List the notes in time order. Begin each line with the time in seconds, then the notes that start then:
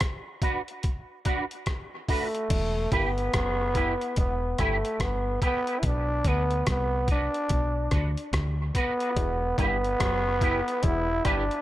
0.00 kick, cross-stick, closed hi-hat
0.42 D4 F#4 B4, kick, closed hi-hat
0.68 closed hi-hat
0.83 kick, closed hi-hat
1.25 D4 F#4 B4, kick, closed hi-hat
1.51 closed hi-hat
1.66 kick, cross-stick, closed hi-hat
2.08 A3 D4 F#4 B4, kick, open hi-hat
2.34 muted clean electric guitar stroke, closed hi-hat
2.50 E1, kick, closed hi-hat, crash
2.92 G1 B3 E4 G4 B4, kick, closed hi-hat
3.18 closed hi-hat
3.33 F#1, kick, cross-stick, closed hi-hat
3.75 E4 G4 B4, kick, closed hi-hat
4.01 closed hi-hat
4.16 E1 B3, kick, closed hi-hat
4.58 G1 A3 E4 G4 B4, kick, cross-stick, closed hi-hat
4.84 muted clean electric guitar stroke, closed hi-hat
5.00 G1 B3, kick, cross-stick, closed hi-hat
5.41 B3 E4 G4 B4, kick, closed hi-hat
5.67 E4 G4 B4, closed hi-hat
5.80 B1 E4, kick, closed hi-hat
5.86 D4
6.24 D2 B3 D4 F#4 B4, kick, closed hi-hat
6.51 closed hi-hat
6.67 C2 B3, kick, cross-stick, closed hi-hat
7.08 D4 F#4 B4, kick, closed hi-hat
7.34 closed hi-hat
7.49 B1, kick, closed hi-hat
7.91 D2 D4 F#4 B4, kick, cross-stick, closed hi-hat
8.17 closed hi-hat
8.33 D2, kick, cross-stick, closed hi-hat
8.74 B3 D4 F#4 B4, kick, closed hi-hat
9.00 D4 F#4 B4, closed hi-hat
9.17 E1 E2, kick, closed hi-hat
9.58 G1 G2 B3 E4 G4 B4, kick, closed hi-hat
9.84 closed hi-hat
10.00 F#1 F#2, kick, cross-stick, closed hi-hat
10.41 E4 G4 B4, kick, closed hi-hat
10.68 closed hi-hat
10.83 E1 E2 E4, kick, closed hi-hat
11.09 muted clean electric guitar stroke
11.24 G1 G2 D4 E4 G4 B4, kick, cross-stick, closed hi-hat
11.51 closed hi-hat